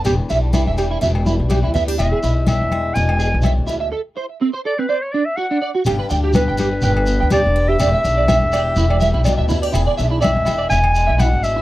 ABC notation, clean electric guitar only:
X:1
M:4/4
L:1/16
Q:"Swing 16ths" 1/4=124
K:Em
V:1 name="Clean electric guitar"
G z e z E e G E e z E z G E e G | e ^G E z6 z G z e z E e | A z c z C c A C d z D z F D d F | G B g G B g G z g z2 g G z2 G |
d e z d e z d z E d e E d e E d | E d e E d z E d e z2 e E z2 E |]